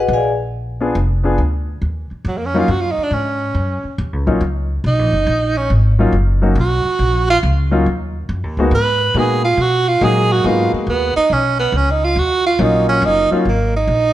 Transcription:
Already playing: F#5
0.00 F#4 B4 D#5
0.08 A#1
0.13 G#4 D5 F5 G#5
0.81 B3 D4 F4 G#4
0.95 F1
1.24 B3 D4 F4 G#4
1.38 D2
1.82 D#2
2.11 muted upright bass stroke
2.25 F2 F#3
2.37 A#3
2.46 C#4
2.54 F#3 A#3 C#4 D#4 F4
2.59 F4
2.68 F#2 F#4
2.81 F4
2.91 D#4
2.98 muted upright bass stroke
3.03 D4
3.11 G#2 C#4
3.55 F#2
3.84 muted upright bass stroke
3.98 D#2
4.13 C#2
4.27 A#1 F#3 A#3 C#4 D#4 F4
4.41 C#2
4.84 B1 D#4
4.99 A#1
5.12 F#1
5.27 A#1
5.57 C#4
5.70 G#1
5.99 F#3 A#3 C#4 D#4 F4
6.12 F#1
6.42 F#3 A#3 C#4 D#4 F#4
6.55 B1
6.60 F#4
6.85 muted upright bass stroke
6.99 A#1
7.30 F4
7.43 C#2
7.71 F#3 A#3 C#4 D#4 F4
7.86 D#2
8.29 F#2
8.43 D#2
8.57 C#2 G#3 A#3 B3 D#4 F#4
8.71 G#2 B4
9.14 A#2 G#3 A#3 B3 D#4 F#4 G#4
9.45 F4
9.57 B2
9.61 F#4
9.88 F4
10.01 A#2 F#3 G#3 A#3 D#4 F#4 G#4
10.32 F#4
10.44 G#2 G#3 A#3 B3 D#4 F4 F#4
10.73 G#3, muted upright bass stroke
10.87 D#2 B3
11.16 D#4, muted upright bass stroke
11.30 B1 C#4
11.59 B3
11.72 C#2
11.77 C#4
11.91 D#4
12.05 F4
12.16 D#2 F#4
12.46 F4
12.59 A#1 F#3 A#3 C#4 D#4 F4
12.89 C#4
13.02 F#1 D#4
13.31 F#3 A#3 C#4 D#4 F4, muted upright bass stroke
13.45 G#1 A#3
13.76 D#4
13.87 A#1

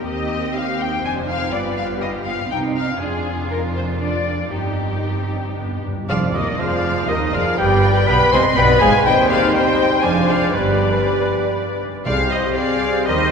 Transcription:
Already playing: G4
0.06 D#2 C4 G4 D#5
0.55 F5
0.80 G5
1.03 F1 F2 C4 D4 C5 G#5
1.28 D#4 F5
1.52 G1 G2 B3 F4 B4 D5
1.77 F5
2.01 G4 D#5
2.26 F5
2.50 C2 C3 C4 D#4 G5
2.75 F5
3.00 F1 F2 D4 F4 G#4
3.50 A#4
3.76 C5
4.00 D4 D5
4.52 G1 G2 C4 D#4 G4
5.57 G1 G2 B3 D4
5.65 G2
5.72 G2
5.81 G2
5.88 G2
5.96 G2
6.08 F1 F2 C3 F3 F4 G#4 D5 F5
6.34 D#2 D#3 D#4 G4 C5 D#5
6.59 F1 F2 F3 F4 G#4 C5 D5 F5
7.08 D#2 D#3 D#4 G4 A#4 D#5
7.33 F1 F2 F3 F4 G#4 D5 F5
7.58 G1 G2 G3 G4 B4 D5 G5
8.07 B1 B2 B3 B4 D5 G5 B5
8.32 C2 C3 C4 C5 D#5 G#5 C6
8.57 B1 B2 B3 B4 D5 G5 B5
8.81 G#1 G#2 G#3 G#4 C5 F5 G#5
9.05 D#2 D#3 G3 C4 D#4 C5 D#5 G5
9.29 G#4 D5 F5
9.54 C4 D#4 C5 D#5 G5
10.03 F1 F2 F3 G#3 D4 C5 D5 F5 G#5
10.29 G#4 D5 F5
10.53 G1 G2 G3 B3 G4 B4 D5
12.06 C2 C3 G3 C4 G#4 C5 D5 F5
12.32 G4 C5 D#5
12.56 G4 G#4 D5 F5
13.06 D#2 D#3 G3 D#4 G4 A#4 C5 D#5

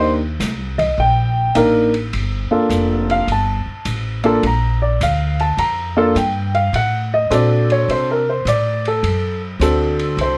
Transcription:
Already playing: D#2 A#3 D4 D#4 G4
0.00 C5
0.40 C2, snare, hi-hat pedal, ride
0.78 D#5, kick, ride
0.98 A#1 G5
1.55 A1 A#3 D4 D#4 A#4, hi-hat pedal, ride
1.94 ride
2.13 G1, ride
2.51 A#3 D4 F4 A4, muted upright bass stroke
2.69 F1, hi-hat pedal, ride
3.10 F5, ride
3.27 G1, ride
3.32 A5
3.66 muted upright bass stroke
3.85 A1, hi-hat pedal, ride
4.23 A#3 D4 F4 A4, ride
4.43 A#1 A#5, ride
4.82 D5
5.01 D2 F5, hi-hat pedal, ride
5.39 A5, ride
5.57 F2 A#5, ride
5.97 A#3 D4 F4 A4 A5
6.15 G2 G5, hi-hat pedal, ride
6.55 F5, ride
6.73 A2 F#5, ride
7.14 D#5
7.30 A#2 C4 D4 F#4 A4 D5, hi-hat pedal, ride
7.70 C#5, ride
7.88 C3 C5, ride
8.11 A#4
8.30 C5
8.45 A2 D5, hi-hat pedal, ride
8.85 A4, ride
9.03 F#2, ride
9.60 D2 C4 D4 F#4 A4, hi-hat pedal, ride
9.99 ride
10.17 C2, ride
10.21 C5

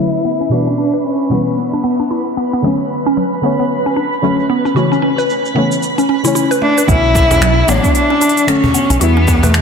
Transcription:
Already playing: D3 F#3 E4 B4
0.00 A3 C#4
0.25 B3
0.41 C#4, shaker
0.49 B2 E3 G3 D4 F#4, shaker
0.53 B3
0.67 C#4, shaker
0.78 D4
0.94 B4, shaker
1.05 C#4, shaker
1.20 shaker
1.29 B2 E3 G3 B3
1.33 B3
1.47 shaker
1.58 B3, shaker
1.73 D4, shaker
1.84 B3
1.99 D4, shaker
2.11 E4, shaker
2.27 shaker
2.37 B3
2.53 B3, shaker
2.62 D3 F#3 A3 B3 C#4, shaker
2.80 shaker
3.06 C#4, shaker
3.17 F#3, shaker
3.33 shaker
3.41 D3 F#3 A3 B3 C#4
3.59 B3, shaker
3.71 shaker
3.86 C#4, shaker
3.96 D4
4.13 shaker
4.22 D3 F#3 A3 C#4, shaker
4.40 shaker
4.50 B3
4.65 C#4, shaker
4.74 C#3 E3 A3 C#4 F#4, shaker
4.92 C#4, shaker
5.02 C#4
5.18 B4, shaker
5.30 shaker
5.46 shaker
5.54 C#3 E3 A3 B3 C#4
5.72 shaker
5.83 shaker
5.98 C#4, shaker
6.09 C#4
6.23 C#3 E3 A3 C#4 E4, shaker
6.35 E4, shaker
6.51 B4, shaker
6.62 A3 D4
6.78 B4, shaker
6.87 B1 D3 F#3 A3 B3 C#4 E4, kick, open hi-hat, shaker
7.15 kick, cajon slap, shaker
7.31 C#4, cajon bass, cajon slap, open hi-hat, shaker
7.41 F#3, finger snap, open hi-hat, shaker
7.66 A1 D3 F#3 A3 B3 D4 C#5, cajon slap, open hi-hat, shaker
7.84 B3, kick, open hi-hat, shaker
7.95 D4, open hi-hat, shaker
8.10 C#4
8.21 D4, open hi-hat, shaker
8.29 open hi-hat
8.37 open hi-hat, shaker
8.47 D3 F#3 A3 C#4, finger snap, open hi-hat, shaker
8.64 cajon bass
8.74 B3, open hi-hat, shaker
8.90 B1 C#4, open hi-hat, shaker
8.99 E2 E3 G3 B3 F#4, open hi-hat, shaker
9.03 E4
9.17 C#4
9.27 D4, kick, cajon slap, open hi-hat, shaker
9.43 A3 B4, cajon bass, open hi-hat, shaker
9.54 finger snap, open hi-hat, shaker

